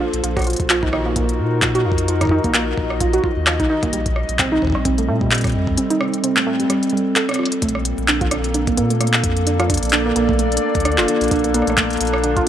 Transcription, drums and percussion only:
0.14 closed hi-hat
0.24 closed hi-hat
0.37 kick, cross-stick, closed hi-hat
0.39 cross-stick, closed hi-hat
0.41 cross-stick, closed hi-hat
0.43 cross-stick, closed hi-hat
0.45 cross-stick, closed hi-hat
0.50 closed hi-hat
0.53 closed hi-hat
0.56 kick, closed hi-hat
0.60 closed hi-hat
0.70 clap, closed hi-hat
0.83 kick
0.93 cross-stick
1.16 kick, closed hi-hat
1.29 closed hi-hat
1.62 kick, cross-stick, clap, closed hi-hat
1.75 closed hi-hat
1.92 kick
1.98 closed hi-hat
2.08 closed hi-hat
2.21 kick, cross-stick, closed hi-hat
2.23 kick
2.25 kick
2.27 kick
2.29 kick
2.44 kick, closed hi-hat
2.54 clap, closed hi-hat
2.78 kick
2.90 cross-stick
3.01 kick, closed hi-hat
3.13 closed hi-hat
3.24 kick
3.47 cross-stick, clap, closed hi-hat
3.60 kick, closed hi-hat
3.83 kick, closed hi-hat
3.93 closed hi-hat
4.06 kick, closed hi-hat
4.16 cross-stick
4.29 closed hi-hat
4.39 kick, clap, closed hi-hat
4.62 kick
4.65 kick
4.67 kick
4.70 kick
4.72 kick, cross-stick
4.85 kick, closed hi-hat
4.98 closed hi-hat
5.21 kick
5.31 clap, closed hi-hat
5.35 closed hi-hat
5.38 closed hi-hat
5.41 cross-stick, closed hi-hat
5.44 kick, closed hi-hat
5.47 closed hi-hat
5.49 closed hi-hat
5.52 closed hi-hat
5.67 kick
5.78 closed hi-hat
5.90 closed hi-hat
6.01 cross-stick
6.14 closed hi-hat
6.24 closed hi-hat
6.37 clap
6.60 closed hi-hat
6.70 cross-stick, closed hi-hat
6.83 closed hi-hat
6.90 closed hi-hat
6.97 closed hi-hat
7.16 clap, closed hi-hat
7.29 cross-stick, closed hi-hat
7.31 cross-stick, closed hi-hat
7.36 cross-stick
7.39 cross-stick
7.43 cross-stick, closed hi-hat
7.47 cross-stick
7.52 closed hi-hat
7.62 kick, closed hi-hat
7.69 closed hi-hat
7.75 cross-stick
7.85 closed hi-hat
7.98 closed hi-hat
8.08 clap, closed hi-hat
8.21 kick, closed hi-hat
8.31 cross-stick, closed hi-hat
8.44 closed hi-hat
8.54 closed hi-hat
8.67 kick, closed hi-hat
8.77 closed hi-hat
8.90 closed hi-hat
9.01 cross-stick, closed hi-hat
9.07 closed hi-hat
9.13 clap
9.24 kick, closed hi-hat
9.37 closed hi-hat
9.47 closed hi-hat
9.60 cross-stick, closed hi-hat
9.70 kick, closed hi-hat
9.74 closed hi-hat
9.77 closed hi-hat
9.83 closed hi-hat
9.85 closed hi-hat
9.89 clap, closed hi-hat
9.93 closed hi-hat
10.16 closed hi-hat
10.29 kick
10.39 closed hi-hat
10.52 closed hi-hat
10.57 closed hi-hat
10.75 kick, closed hi-hat
10.80 closed hi-hat
10.85 cross-stick, closed hi-hat
10.92 closed hi-hat
10.98 clap
11.08 closed hi-hat
11.21 closed hi-hat
11.24 closed hi-hat
11.28 closed hi-hat
11.31 kick, closed hi-hat
11.39 closed hi-hat
11.44 closed hi-hat
11.54 cross-stick, closed hi-hat
11.62 cross-stick
11.67 cross-stick, closed hi-hat
11.78 kick, clap, closed hi-hat
11.90 closed hi-hat
11.93 closed hi-hat
11.97 closed hi-hat
12.01 closed hi-hat
12.05 closed hi-hat
12.07 closed hi-hat
12.14 cross-stick
12.24 closed hi-hat
12.37 kick, closed hi-hat

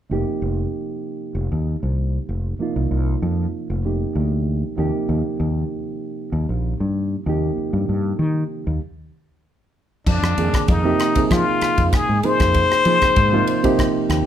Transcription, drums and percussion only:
10.07 kick, crash
10.24 cross-stick
10.38 ride
10.54 kick, cross-stick, ride
10.68 kick, ride
11.00 cross-stick, ride
11.15 kick, ride
11.31 kick, cross-stick, ride
11.61 cross-stick, ride
11.78 kick, ride
11.93 kick, cross-stick, ride
12.23 ride
12.40 kick, cross-stick, ride
12.54 kick, ride
12.72 cross-stick
12.85 ride
13.01 kick, cross-stick, ride
13.16 kick, ride
13.47 ride
13.64 kick, ride
13.79 kick, cross-stick, ride
14.10 cross-stick, ride

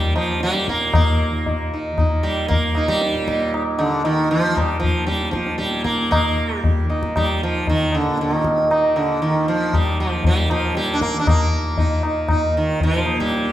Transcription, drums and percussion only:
0.16 tabla na
0.40 tabla te
0.54 tabla te
0.68 tabla ke
0.81 tabla te
0.94 tabla na, tabla ge
1.46 tabla tin, tabla ge
1.98 tabla na, tabla ge
2.51 tabla tin, tabla ge
2.75 tabla na
2.88 tabla ke
3.01 tabla te
3.15 tabla te
3.28 tabla ke
3.40 tabla te
3.54 tabla na
3.79 tabla na
4.04 tabla tin
4.57 tabla na, tabla ge
4.83 tabla ge
5.08 tabla te
5.21 tabla te
5.33 tabla ke
5.46 tabla te
5.59 tabla te
5.71 tabla te
5.85 tabla ke
5.98 tabla te
6.12 tabla na, tabla ge
6.64 tabla tin, tabla ge
6.90 tabla na
7.03 tabla ke
7.16 tabla na, tabla ge
7.67 tabla tin, tabla ge
7.92 tabla na
8.18 tabla te
8.31 tabla te
8.44 tabla ke
8.58 tabla te
8.71 tabla na
8.97 tabla na
9.22 tabla tin
9.73 tabla na, tabla ge
10.24 tabla tin, tabla ge
10.50 tabla na
10.75 tabla te
10.88 tabla te
11.01 tabla ke
11.15 tabla te
11.27 tabla na, tabla ge
11.78 tabla tin, tabla ge
12.03 tabla na
12.29 tabla na, tabla ge
12.80 tabla tin, tabla ge
13.06 tabla na
13.20 tabla ke
13.32 tabla te
13.45 tabla te

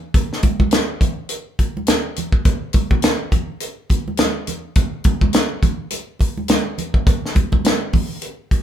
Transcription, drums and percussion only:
0.14 kick, closed hi-hat
0.33 snare
0.43 kick, closed hi-hat, high conga
0.60 kick, high conga
0.71 snare, closed hi-hat, muted conga, high conga
1.01 kick, closed hi-hat, low conga
1.29 closed hi-hat
1.59 kick, closed hi-hat, muted conga
1.77 high conga
1.87 snare, closed hi-hat, muted conga, high conga
2.16 closed hi-hat, muted conga, low conga
2.32 kick
2.45 kick, closed hi-hat, muted conga
2.73 kick, closed hi-hat, high conga
2.91 kick, high conga
3.02 snare, closed hi-hat, high conga
3.32 kick, closed hi-hat, muted conga, low conga
3.60 closed hi-hat
3.90 kick, closed hi-hat, muted conga
4.08 high conga
4.17 snare, closed hi-hat, muted conga, high conga
4.47 closed hi-hat, muted conga, low conga
4.75 kick, closed hi-hat, muted conga
5.04 kick, closed hi-hat, muted conga, high conga
5.21 kick, high conga
5.33 snare, closed hi-hat, high conga
5.63 kick, closed hi-hat, muted conga, low conga
5.90 closed hi-hat, muted conga
6.19 kick, closed hi-hat, muted conga
6.38 high conga
6.48 snare, closed hi-hat, muted conga, high conga
6.78 closed hi-hat, muted conga, low conga
6.94 kick
7.07 kick, closed hi-hat, muted conga
7.26 snare
7.35 kick, closed hi-hat, high conga
7.52 kick, high conga
7.65 snare, closed hi-hat, high conga
7.93 kick, open hi-hat, muted conga, low conga
8.22 closed hi-hat
8.51 kick, closed hi-hat

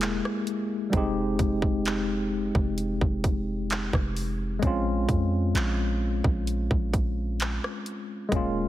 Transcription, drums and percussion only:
0.01 clap, closed hi-hat
0.25 cross-stick
0.47 closed hi-hat
0.93 kick, closed hi-hat
1.39 kick, closed hi-hat
1.62 kick
1.85 clap, closed hi-hat
2.55 kick
2.78 closed hi-hat
3.01 kick
3.24 kick, closed hi-hat
3.70 clap, closed hi-hat
3.93 kick, cross-stick
4.17 open hi-hat
4.63 kick, closed hi-hat
5.09 kick, closed hi-hat
5.55 clap, closed hi-hat
6.24 kick
6.47 closed hi-hat
6.71 kick
6.94 kick, closed hi-hat
7.40 clap, closed hi-hat
7.64 cross-stick
7.86 closed hi-hat
8.32 kick, closed hi-hat

